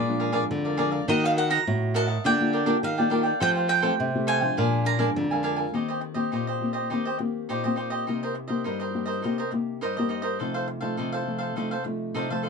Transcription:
Already playing: A#2 G#4 A#4 D5 F5
0.08 F3 G#3 D4
0.20 G#4 A#4 D5 F5
0.32 F3 G#3 D4 G#4 A#4 D5 F5
0.51 F2 D3
0.65 A#4 D5 F5
0.77 F3 G#3 D4 G#4 A#4 D5 F5
0.90 A#4 D5 F5
1.08 D#3 A#3 D#4 F#4 A#4 D#5 F#5
1.24 A#4 D#5 F5 F#5
1.36 F#4 A#4 D#5 F#5
1.50 F#4 A#4 D#5 F#5 A#5
1.67 A2 D#4 F#4
1.94 F#4 A#4 D#5 F#5 A5
2.07 A#4 D#5 F#5
2.24 D3 A#3 D4 F4 G4 A#4 D5 G5
2.40 A#3 F4 G4
2.53 D4 A#4 D5 G5
2.66 A#3 D4 F4 G4 A#4 D5 G5
2.83 D#3 F5
2.98 A#3 F4 G4 A#4 D5 G5
3.10 A#3 D4 F4 G4 A#4 D5 G5
3.23 A#4 D5 G5
3.40 F3 A3 C4 G4 A4 C5 F5 G5
3.55 C5 F5 G5
3.68 A4 C5 F5 G5
3.82 A3 C4 G4 A4 C5 F5 G5
4.00 C3
4.14 A3 C4 G4
4.27 A4 C5 F5 G5 G#5
4.40 F3 G#3 D4 C5 F5 G5
4.57 A#2 D4 A#4 F5 G#5
4.85 D4 A#4 F5 G#5 A#5
4.99 F3 G#3 D4 A#4 F5 G#5
5.16 F2 D3
5.31 F3 G#3 D4 A#4 F5 G#5
5.43 D4 A#4 F5 G#5
5.56 A#4 F5 G#5
5.74 D#3 A#3 C4 D#4 G4 C5 D#5
5.88 G4 C5 D#5
6.01 muted cavaquinho stroke
6.14 A#3 C4 G4 C5 D#5
6.32 A#2 D#4 G4 C5 D#5
6.47 G4 C5 D#5
6.61 A#3 C4 G4
6.73 G4 C5 D#5
6.90 D#3 A#3 C4 D#4 G4 C5 D#5
7.05 G4 C5 D#5
7.18 A#3 C4 G4, muted cavaquinho stroke
7.49 A#2 D#4 G4 C5 D#5
7.64 A#3 C4 G4 C5 D#5
7.76 D#4 G4 C5 D#5
7.90 G4 C5 D#5
8.07 C3 A#3 D#4 G4 A#4 C5 D#5
8.23 A#4 C5 D#5
8.35 muted cavaquinho stroke
8.48 A#3 D#4 G4 A#4 C5 D#5
8.64 G2 D#4 A#4 C5 D#5
8.80 A#4 C5 D#5
8.94 A#3 D#4 G4
9.06 A#4 C5 D#5
9.22 C3 A#3 D#4 G4 A#4 C5 D#5
9.38 A#4 C5 D#5
9.51 A#3 D#4 G4, muted cavaquinho stroke
9.81 G2 D#4 A#4 C5 D#5
9.97 A#3 D#4 G4 A#4 C5 D#5
10.09 D#4 A#4 C5 D#5
10.22 A#4 C5 D#5
10.39 C3 F3 A3 D#4 A4 C5 F5
10.54 A4 C5 F5
10.67 muted cavaquinho stroke
10.81 F3 A3 D#4 A4 C5 F5
10.97 C3 D#4 A4 C5 F5
11.12 A4 C5 F5
11.26 F3 A3 D#4
11.38 A4 C5 F5
11.56 C3 F3 A3 D#4 A4 C5 F5
11.71 A4 C5 F5
11.84 F3 A3 D#4, muted cavaquinho stroke
12.14 C3 D#4 A4 C5 F5
12.30 F3 A3 D#4 A4 C5 F5
12.43 D#4 A4 C5 F5

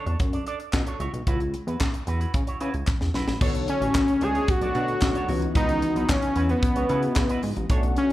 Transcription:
0.06 E2 D4 A4 C#5, closed hi-hat
0.20 F#2, kick, closed hi-hat
0.33 D4 A4 D5, closed hi-hat
0.47 D4 A4 D5, closed hi-hat
0.60 muted clean electric guitar stroke, closed hi-hat
0.73 B2, kick, snare, clap
0.87 D4 A4 C#5, closed hi-hat
1.00 C#2 E4 F#4 C#5, closed hi-hat
1.13 B1, muted clean electric guitar stroke, closed hi-hat
1.27 C#2 E4 F#4 B4, kick, closed hi-hat
1.40 muted clean electric guitar stroke, closed hi-hat
1.54 muted clean electric guitar stroke, closed hi-hat
1.67 E2 E4 F#4 B4, closed hi-hat
1.81 kick, snare, clap
1.94 muted clean electric guitar stroke, closed hi-hat
2.07 E2 E4 F#4 B4, closed hi-hat
2.21 E4 F#4 B4, closed hi-hat
2.34 C#3, muted clean electric guitar stroke, kick, closed hi-hat
2.47 E4 F#4 C#5, closed hi-hat
2.60 C#3 E4 F#4 B4, closed hi-hat
2.74 C#2, muted clean electric guitar stroke, closed hi-hat
2.87 muted clean electric guitar stroke, kick, snare, clap
3.01 E2, muted clean electric guitar stroke, snare
3.14 B1 E4 F#4 B4, snare
3.27 A1 E4 F#4 B4, snare
3.41 B1 D3 A3 B3 D4 F#4 A4 C#5, kick, crash
3.54 muted clean electric guitar stroke, closed hi-hat
3.68 C#4, muted clean electric guitar stroke, closed hi-hat
3.81 A1 D4 A4 C#5, closed hi-hat
3.95 muted clean electric guitar stroke, kick, snare, clap
4.08 muted clean electric guitar stroke, closed hi-hat
4.21 C#2 D4 G#4 A4 C#5, closed hi-hat
4.35 D4 A4 C#5, closed hi-hat
4.48 F#4, muted clean electric guitar stroke, kick, closed hi-hat
4.61 B1 D4 A4 D5, closed hi-hat
4.75 B2 D4 F#4 A4 C#5 D5, closed hi-hat
4.88 muted clean electric guitar stroke, closed hi-hat
5.01 B1, kick, snare, clap
5.15 D4 A4 C#5, closed hi-hat
5.28 C#2 C#3 E3 B3 D#4 E4 F#4 C#5 D#5, open hi-hat
5.42 muted clean electric guitar stroke, closed hi-hat
5.55 C#2 D#4 E4 F#4 B4, kick, closed hi-hat
5.69 muted clean electric guitar stroke, closed hi-hat
5.82 muted clean electric guitar stroke, closed hi-hat
5.96 B1 E4 F#4 B4, closed hi-hat
6.09 C#4, kick, snare, clap
6.22 muted clean electric guitar stroke, closed hi-hat
6.36 E2 E4 F#4 B4, closed hi-hat
6.49 B3 E4 F#4 B4, closed hi-hat
6.63 muted clean electric guitar stroke, kick, closed hi-hat
6.76 C#2 E4 F#4 C#5, closed hi-hat
6.89 C#3 B3 D#4 E4 F#4 B4, closed hi-hat
7.02 muted clean electric guitar stroke, closed hi-hat
7.16 C#3, muted clean electric guitar stroke, kick, snare, clap
7.29 E4 F#4 B4, closed hi-hat
7.43 G#2, muted clean electric guitar stroke, open hi-hat
7.56 A1, muted clean electric guitar stroke, closed hi-hat
7.69 B1 D3 A3 B3 C#4 D4 F#4 A4 C#5, kick, closed hi-hat
7.83 muted clean electric guitar stroke, closed hi-hat
7.96 C#4, muted clean electric guitar stroke, closed hi-hat

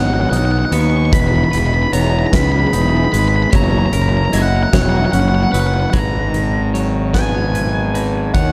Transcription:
Already playing: G#1 D#3 B3 D#4 F#4 C#5
0.06 F#5
0.14 F#5
0.21 F#5
0.30 B1 D#4 F#5, closed hi-hat
0.37 F#5
0.45 F#5
0.51 F#5
0.59 F#5
0.65 F#5
0.72 D#2 B3 B4 C#6, closed hi-hat
0.81 C#6
0.90 C#6
0.97 C#6
1.05 C#6
1.11 E1 E2 E3 B3 G#4 B4 B5, kick, closed hi-hat
1.20 B5
1.28 B5
1.35 B5
1.44 B5
1.51 E1 B4 B5, closed hi-hat
1.58 B5
1.66 B5
1.74 B5
1.83 B5
1.92 E1 B3 C#5 A#5, closed hi-hat
2.01 A#5
2.10 A#5
2.19 A#5
2.27 A#5
2.33 C#2 G#3 B4 B5, kick, snare, closed hi-hat
2.43 B5
2.52 B5
2.60 B5
2.67 B5
2.73 E1 D#4 B5, closed hi-hat
2.82 B5
2.89 B5
2.97 B5
3.05 B5
3.12 G#1 G#3 B4 B5, closed hi-hat
3.19 B5
3.28 B5
3.36 B5
3.43 B5
3.51 F#1 F#3 C#4 E4 C#5 A#5 B5, kick, closed hi-hat
3.56 A#5
3.64 A#5
3.71 A#5
3.79 A#5
3.86 A#5
3.93 F#1 A#4 A#5, closed hi-hat
4.02 A#5
4.09 A#5
4.17 A#5
4.25 A#5
4.33 F#1 E4 D#5 F#5 A#5, closed hi-hat
4.41 F#5
4.48 F#5
4.57 F#5
4.63 F#5
4.73 E1 F#3 C#5 F#5, kick, snare, closed hi-hat
4.82 F#5
4.89 F#5
4.97 F#5
5.05 F#5
5.12 F#1 C#4 F#5, closed hi-hat
5.20 F#5
5.28 F#5
5.35 F#5
5.43 F#5
5.52 F#1 F#3 B4 F#5, closed hi-hat
5.60 F#5
5.67 F#5
5.74 F#5
5.80 F#5
5.90 G#2 B4 F#5 A#5, kick, closed hi-hat
5.94 G#1
6.33 D#3, closed hi-hat
6.74 F#3 C#5, closed hi-hat
7.13 B3 B4 G#5, kick, snare, closed hi-hat
7.55 B4, closed hi-hat
7.95 D#4 B4, closed hi-hat
8.34 D#2 D#3 C#5 F#5, kick, closed hi-hat

